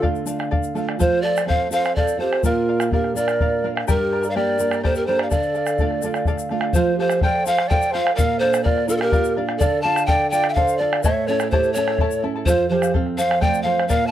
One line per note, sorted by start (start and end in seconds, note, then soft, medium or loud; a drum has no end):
0.00 0.95 D3 medium
0.00 0.24 A3 soft
0.00 0.25 D4 soft
0.00 0.25 F4 medium
0.00 0.25 A4 medium
0.00 0.26 D5 medium
0.00 0.27 F5 medium
0.00 bombo rim soft
0.00 bombo low medium
0.15 shaker soft
0.25 0.73 A3 soft
0.25 0.73 D4 soft
0.25 0.73 F4 soft
0.25 0.39 A4 medium
0.25 0.39 D5 medium
0.25 0.38 F5 medium
0.25 shaker medium
0.39 0.50 D5 soft
0.39 0.50 F5 medium
0.39 bombo rim medium
0.51 0.74 A4 medium
0.51 0.75 D5 medium
0.51 0.75 F5 medium
0.51 bombo low medium
0.63 shaker medium
0.75 0.98 A3 soft
0.75 0.98 D4 soft
0.75 0.98 F4 medium
0.75 0.87 A4 medium
0.75 0.88 D5 medium
0.75 0.86 F5 medium
0.75 shaker soft
0.88 1.00 D5 soft
0.88 0.99 F5 soft
0.88 bombo rim medium
0.98 2.39 F3 medium
0.98 1.25 F4 medium
0.98 1.23 A4 medium
0.98 1.23 C5 medium
0.98 1.24 C5 medium
0.98 1.24 F5 medium
0.98 bombo low medium
0.98 shaker medium
1.22 1.46 A4 medium
1.22 1.36 A4 medium
1.22 1.36 C5 medium
1.22 1.47 D5 loud
1.22 1.36 F5 medium
1.36 1.47 C5 soft
1.36 1.48 F5 soft
1.36 bombo rim medium
1.36 shaker medium
1.46 1.69 C4 soft
1.46 1.70 F4 soft
1.46 1.70 A4 medium
1.46 1.71 A4 medium
1.46 1.69 C5 medium
1.46 1.72 C5 medium
1.46 1.70 F5 medium
1.46 1.72 F5 medium
1.50 bombo low medium
1.62 bombo rim soft
1.70 2.16 C4 soft
1.70 2.17 F4 soft
1.70 2.17 A4 medium
1.70 1.84 A4 medium
1.70 1.94 C5 medium
1.70 1.84 C5 medium
1.70 1.94 F5 loud
1.70 shaker medium
1.74 1.83 F5 medium
1.84 1.96 C5 soft
1.84 1.96 F5 soft
1.84 bombo rim medium
1.84 shaker soft
1.96 2.18 A4 medium
1.96 2.19 A4 medium
1.96 2.20 C5 medium
1.96 2.18 D5 medium
1.96 2.20 F5 medium
1.96 bombo low medium
2.08 shaker medium
2.18 2.42 C4 soft
2.18 2.42 F4 soft
2.18 2.44 G4 medium
2.18 2.42 A4 medium
2.18 2.32 A4 medium
2.18 2.46 C5 medium
2.18 2.32 C5 medium
2.18 2.31 F5 medium
2.32 2.44 C5 soft
2.32 2.44 F5 medium
2.32 bombo rim medium
2.42 3.83 A#2 medium
2.42 2.91 F4 medium
2.42 2.67 A#4 medium
2.42 2.92 A#4 medium
2.42 2.68 D5 medium
2.42 2.68 F5 medium
2.42 bombo low medium
2.42 shaker medium
2.68 2.80 A#4 medium
2.68 2.80 D5 medium
2.68 2.80 F5 medium
2.80 2.92 D5 soft
2.80 2.92 F5 medium
2.80 bombo rim medium
2.80 shaker medium
2.91 3.14 A#3 soft
2.91 3.14 D4 soft
2.91 3.15 F4 medium
2.91 3.18 G4 medium
2.91 3.17 A#4 medium
2.91 3.16 A#4 medium
2.91 3.16 D5 medium
2.91 3.16 F5 medium
2.91 bombo low medium
3.04 bombo rim soft
3.15 3.61 A#3 soft
3.15 3.61 D4 soft
3.15 3.62 F4 soft
3.15 3.69 A#4 medium
3.15 3.28 A#4 medium
3.15 3.69 D5 loud
3.15 3.28 D5 medium
3.15 3.28 F5 medium
3.15 shaker loud
3.28 3.40 D5 soft
3.28 3.40 F5 soft
3.28 bombo rim medium
3.28 shaker soft
3.40 3.63 A#4 medium
3.40 3.64 D5 medium
3.40 3.64 F5 medium
3.40 bombo low medium
3.64 3.87 A#3 medium
3.64 3.87 D4 soft
3.64 3.87 F4 medium
3.64 3.75 A#4 medium
3.64 3.75 D5 medium
3.64 3.74 F5 medium
3.75 3.87 D5 soft
3.75 3.87 F5 medium
3.75 bombo rim medium
3.87 5.27 G2 medium
3.87 4.11 G4 medium
3.87 4.30 G4 medium
3.87 4.11 A#4 medium
3.87 4.31 A#4 medium
3.87 4.11 D5 medium
3.87 4.10 G5 medium
3.87 4.11 A#5 medium
3.87 bombo low medium
3.87 shaker medium
4.11 4.23 A#4 medium
4.11 4.23 D5 medium
4.11 4.23 G5 medium
4.11 4.22 A#5 medium
4.23 4.35 A#4 soft
4.23 4.35 D5 soft
4.23 4.35 A#5 medium
4.23 shaker medium
4.29 4.37 D5 medium
4.29 4.38 F5 medium
4.35 4.59 A#3 medium
4.35 4.59 D4 soft
4.35 4.59 G4 medium
4.35 4.83 A#4 medium
4.35 4.59 A#4 medium
4.35 4.83 D5 loud
4.35 4.59 D5 medium
4.35 4.58 G5 medium
4.35 4.60 A#5 medium
4.49 bombo rim soft
4.59 5.06 A#3 soft
4.59 5.06 D4 soft
4.59 5.06 G4 soft
4.59 4.71 A#4 medium
4.59 4.71 D5 medium
4.59 4.71 G5 medium
4.59 4.70 A#5 medium
4.59 shaker medium
4.71 4.83 A#4 soft
4.71 4.83 D5 soft
4.71 4.83 A#5 medium
4.71 bombo rim medium
4.71 shaker soft
4.83 5.07 G4 medium
4.83 4.98 A4 medium
4.83 5.07 A#4 medium
4.83 4.98 C5 medium
4.83 5.07 D5 medium
4.83 5.06 G5 medium
4.83 5.07 A#5 medium
4.83 bombo low medium
4.95 5.08 G4 medium
4.95 5.08 A#4 medium
4.95 shaker medium
5.06 5.31 A#3 medium
5.06 5.31 D4 soft
5.06 5.31 G4 medium
5.06 5.22 A4 medium
5.06 5.19 A#4 medium
5.06 5.22 C5 medium
5.06 5.18 D5 medium
5.06 5.19 G5 medium
5.06 5.18 A#5 medium
5.19 5.30 A#4 soft
5.19 5.30 D5 soft
5.19 5.32 F5 medium
5.19 5.31 A#5 medium
5.19 bombo rim medium
5.23 5.34 D5 medium
5.31 6.71 D3 medium
5.31 5.53 A4 medium
5.31 6.27 A4 medium
5.31 6.26 D5 medium
5.31 5.54 D5 medium
5.31 5.55 F5 medium
5.31 bombo low medium
5.31 shaker medium
5.43 shaker soft
5.54 5.66 A4 medium
5.54 5.67 D5 medium
5.54 5.66 F5 medium
5.54 shaker soft
5.67 5.80 D5 soft
5.67 5.79 F5 medium
5.67 bombo rim medium
5.67 shaker medium
5.78 6.02 A3 soft
5.78 6.03 D4 soft
5.78 6.03 F4 medium
5.78 6.03 A4 medium
5.78 6.03 D5 medium
5.78 6.04 F5 medium
5.78 bombo low medium
5.78 shaker soft
5.91 bombo rim soft
6.02 6.49 A3 soft
6.02 6.49 D4 soft
6.02 6.49 F4 medium
6.02 6.15 A4 medium
6.02 6.15 D5 medium
6.02 6.15 F5 medium
6.02 bombo rim soft
6.02 shaker loud
6.14 6.27 D5 soft
6.14 6.27 F5 medium
6.14 bombo rim medium
6.14 shaker soft
6.25 6.49 A4 medium
6.25 6.50 D5 medium
6.25 6.51 F5 medium
6.25 bombo low medium
6.25 shaker soft
6.38 bombo rim soft
6.38 shaker medium
6.49 6.74 A3 soft
6.49 6.74 D4 soft
6.49 6.74 F4 medium
6.49 6.62 A4 medium
6.49 6.63 D5 medium
6.49 6.61 F5 medium
6.49 bombo rim soft
6.61 6.75 D5 medium
6.61 6.74 F5 medium
6.61 bombo rim medium
6.73 8.14 F3 medium
6.73 6.96 F4 medium
6.73 6.99 A4 medium
6.73 6.96 C5 medium
6.73 6.99 C5 medium
6.73 6.99 F5 medium
6.73 bombo low medium
6.73 shaker medium
6.96 7.22 F4 medium
6.96 7.24 G4 medium
6.96 7.11 A4 medium
6.96 7.24 C5 medium
6.96 7.11 C5 medium
7.01 7.10 F5 medium
7.09 7.22 C5 soft
7.09 7.22 F5 medium
7.09 bombo rim medium
7.09 shaker medium
7.21 7.45 A4 medium
7.21 7.46 A4 medium
7.21 7.46 C5 medium
7.21 7.46 D5 medium
7.21 7.47 F5 medium
7.21 7.48 G5 medium
7.21 bombo rim soft
7.21 bombo low medium
7.35 bombo rim soft
7.44 7.69 F4 soft
7.44 7.58 A4 medium
7.44 7.69 C5 medium
7.44 7.58 C5 medium
7.44 7.71 F5 loud
7.44 7.57 F5 medium
7.44 shaker loud
7.58 7.69 C5 soft
7.58 7.69 F5 medium
7.58 bombo rim medium
7.68 7.92 A4 medium
7.68 7.92 C5 medium
7.68 7.92 D5 medium
7.68 7.93 F5 medium
7.68 7.95 G5 loud
7.68 bombo low medium
7.68 shaker soft
7.72 7.94 A4 medium
7.82 shaker medium
7.91 8.17 F4 medium
7.91 8.05 A4 medium
7.91 8.14 C5 medium
7.91 8.05 C5 medium
7.91 8.15 F5 loud
7.91 8.03 F5 medium
8.05 8.18 C5 soft
8.05 8.16 F5 medium
8.05 bombo rim medium
8.15 9.57 A#2 medium
8.15 8.41 A#4 medium
8.15 8.39 A#4 medium
8.15 8.40 D5 medium
8.15 8.41 F5 loud
8.15 8.41 F5 medium
8.15 bombo low medium
8.15 shaker medium
8.39 8.65 D4 medium
8.39 8.66 A4 medium
8.39 8.53 A#4 medium
8.39 8.65 C5 loud
8.39 8.53 D5 medium
8.39 8.51 F5 medium
8.52 8.63 D5 soft
8.52 8.64 F5 medium
8.52 bombo rim medium
8.52 shaker medium
8.63 8.89 F4 medium
8.63 8.86 A#4 medium
8.63 8.88 D5 medium
8.63 8.87 D5 medium
8.63 8.88 F5 medium
8.63 bombo rim soft
8.63 bombo low medium
8.78 bombo rim soft
8.87 9.12 D4 medium
8.87 8.96 F4 medium
8.87 9.00 A#4 medium
8.87 8.99 A#4 loud
8.87 9.00 D5 medium
8.87 8.99 F5 medium
8.87 shaker loud
8.96 9.04 F4 medium
8.96 9.03 A4 medium
9.00 9.43 G4 medium
9.00 9.33 A#4 loud
9.00 9.11 D5 soft
9.00 9.12 F5 medium
9.00 bombo rim medium
9.12 9.37 F4 medium
9.12 9.35 A#4 medium
9.12 9.36 D5 medium
9.12 9.37 F5 loud
9.12 bombo low medium
9.12 shaker soft
9.24 shaker medium
9.36 9.61 D4 medium
9.36 9.49 A#4 medium
9.36 9.49 D5 medium
9.36 9.47 F5 medium
9.49 9.60 D5 soft
9.49 9.60 F5 medium
9.49 bombo rim medium
9.58 11.01 D3 medium
9.58 9.82 A4 loud
9.58 9.84 A4 medium
9.58 9.81 D5 loud
9.58 9.85 D5 medium
9.58 9.85 F5 loud
9.58 bombo low medium
9.58 shaker medium
9.82 10.08 F4 medium
9.82 9.97 A4 medium
9.82 10.06 F5 loud
9.82 10.05 A5 loud
9.86 9.96 D5 medium
9.86 9.94 F5 medium
9.95 10.06 D5 soft
9.95 10.07 F5 medium
9.95 bombo rim medium
9.95 shaker medium
10.06 10.31 A4 loud
10.06 10.32 A4 medium
10.06 10.32 D5 medium
10.06 10.30 D5 medium
10.06 10.32 F5 medium
10.06 10.29 G5 loud
10.06 bombo rim soft
10.06 bombo low medium
10.21 bombo rim soft
10.30 10.56 F4 medium
10.30 10.44 A4 medium
10.30 10.51 D5 loud
10.30 10.44 D5 medium
10.30 10.42 F5 medium
10.30 10.49 G5 loud
10.30 shaker loud
10.43 10.56 D5 soft
10.43 10.56 F5 medium
10.43 bombo rim medium
10.49 10.58 E5 medium
10.49 10.55 G5 medium
10.54 10.79 A4 medium
10.54 10.80 A4 medium
10.54 10.82 C5 medium
10.54 10.79 D5 medium
10.54 10.79 F5 loud
10.54 10.81 F5 medium
10.54 bombo low medium
10.54 shaker soft
10.68 shaker medium
10.78 11.04 F4 medium
10.78 10.92 A4 medium
10.78 11.06 A4 medium
10.78 11.04 D5 medium
10.78 10.92 D5 medium
10.82 10.91 F5 medium
10.92 11.04 D5 soft
10.92 11.04 F5 medium
10.92 bombo rim medium
11.03 12.44 A2 medium
11.03 11.28 E4 medium
11.03 11.29 A4 loud
11.03 11.29 C#5 loud
11.03 11.28 C#5 medium
11.03 11.29 E5 loud
11.03 11.28 E5 medium
11.03 11.29 A5 medium
11.03 bombo low medium
11.03 shaker medium
11.27 11.51 C#4 medium
11.27 11.41 E4 medium
11.27 11.51 A4 medium
11.27 11.41 A4 medium
11.27 11.50 C#5 loud
11.27 11.41 E5 medium
11.27 11.41 A5 medium
11.27 shaker soft
11.40 11.52 E4 soft
11.40 11.52 A4 soft
11.40 11.52 A5 medium
11.40 bombo rim medium
11.40 shaker medium
11.51 11.76 E4 medium
11.51 11.74 G4 medium
11.51 11.75 A4 medium
11.51 11.76 A4 medium
11.51 11.72 C5 medium
11.51 11.76 C#5 medium
11.51 11.76 E5 medium
11.51 11.76 A5 medium
11.51 bombo low medium
11.51 shaker soft
11.63 shaker soft
11.73 11.99 C#4 medium
11.73 12.25 A4 medium
11.73 12.24 C#5 loud
11.73 11.88 E5 medium
11.73 bombo rim soft
11.73 shaker loud
11.77 11.88 E4 medium
11.77 11.88 A4 medium
11.77 11.87 A5 medium
11.88 12.00 E4 soft
11.88 12.00 A4 soft
11.88 12.00 A5 medium
11.88 bombo rim medium
11.98 12.23 E4 medium
11.98 12.22 E4 medium
11.98 12.23 A4 medium
11.98 12.24 C#5 medium
11.98 12.21 E5 medium
11.98 12.23 A5 medium
11.98 bombo rim soft
11.98 bombo low medium
12.11 shaker medium
12.22 12.47 C#4 medium
12.22 12.35 E4 medium
12.22 12.35 A4 medium
12.22 12.35 E5 medium
12.22 12.34 A5 medium
12.36 12.47 E4 soft
12.36 12.47 A4 soft
12.36 12.48 A5 medium
12.45 13.86 F2 medium
12.45 12.68 F4 medium
12.45 12.70 A4 medium
12.45 12.69 C5 medium
12.45 12.71 C5 medium
12.45 12.72 F5 medium
12.45 bombo low medium
12.45 shaker loud
12.69 12.94 F3 medium
12.69 12.93 G4 medium
12.69 12.83 A4 medium
12.69 12.92 C5 medium
12.69 12.83 C5 medium
12.74 12.81 F5 medium
12.82 12.94 C5 soft
12.82 12.94 F5 medium
12.82 bombo rim medium
12.82 shaker medium
12.94 13.18 C4 medium
12.94 13.17 A4 medium
12.94 13.17 C5 medium
12.94 13.18 F5 medium
12.94 bombo rim soft
12.94 bombo low medium
13.06 bombo rim soft
13.17 13.42 F3 medium
13.17 13.30 A4 medium
13.17 13.44 C5 medium
13.17 13.30 C5 medium
13.17 13.43 F5 loud
13.17 13.29 F5 medium
13.17 shaker loud
13.30 13.40 C5 soft
13.30 13.41 F5 medium
13.30 bombo rim medium
13.41 13.65 A3 medium
13.41 13.64 A4 medium
13.41 13.65 C5 medium
13.41 13.64 D5 medium
13.41 13.66 F5 loud
13.41 13.62 G5 loud
13.41 bombo low medium
13.41 shaker soft
13.54 shaker medium
13.62 13.89 F3 medium
13.62 13.78 A4 medium
13.62 13.88 C5 medium
13.62 13.78 C5 medium
13.62 13.87 F5 loud
13.67 13.77 F5 medium
13.78 13.91 C5 medium
13.78 13.89 F5 medium
13.78 bombo rim medium
13.88 14.11 A#2 medium
13.88 14.08 A#4 loud
13.88 14.11 A#4 medium
13.88 14.11 D5 medium
13.88 14.09 F5 loud
13.88 14.11 F5 medium
13.88 bombo low medium
13.88 shaker medium
14.06 14.11 F5 medium
14.06 14.11 A5 medium